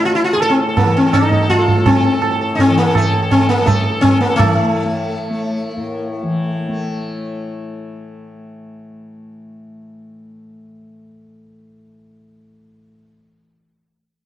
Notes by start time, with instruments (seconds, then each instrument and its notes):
Already playing: tanpura A2 E3 A3
0.03 sitar F4, tabla na
0.15 sitar E4
0.24 sitar F4
0.33 tanpura A2, sitar G#4
0.40 sitar A4, tabla na
0.50 sitar C4
0.60 sitar A4
0.69 sitar A4
0.77 sitar A#3, tabla na, tabla ge
0.83 tanpura E3
0.87 sitar A4
0.97 sitar C4
1.06 sitar A4
1.13 sitar D#4, tabla na, tabla ge
1.22 sitar A4
1.30 tanpura A3, sitar A4, tabla ge
1.41 sitar A4
1.50 sitar F4, tabla na, tabla ge
1.59 sitar A4
1.68 sitar A4, tabla ge
1.77 tanpura A3, sitar A4
1.86 sitar C4, tabla na, tabla ge
1.96 sitar A4
2.05 sitar A4
2.14 sitar A4
2.22 tanpura A2, sitar A4, tabla na
2.31 sitar A4
2.41 sitar A4
2.55 sitar D#4, tabla tin, tabla ge
2.60 sitar C4
2.68 tanpura E3, sitar A4
2.78 sitar A#3, tabla te
2.86 sitar A4
2.95 sitar A3, tabla na, tabla ge
3.04 sitar A4
3.13 tanpura A3, sitar A4
3.22 sitar A4
3.31 sitar C4, tabla tin, tabla ge
3.40 sitar A4
3.49 sitar A#3, tabla te
3.59 tanpura A3, sitar A4
3.66 sitar A3, tabla na, tabla ge
3.75 sitar A4
3.83 sitar A4
3.92 sitar A4
4.01 sitar C4, tabla tin, tabla ge
4.07 tanpura A2
4.11 sitar A4
4.21 sitar A#3, tabla te
4.30 sitar A4
4.36 sitar A3, tabla na, tabla ge
4.40 tanpura E3
4.85 tanpura A3
5.30 tanpura A3
5.77 tanpura A2, sitar A#3
6.13 sitar A3
6.23 tanpura E3
6.57 sitar A#3
6.69 tanpura A3
6.92 sitar A3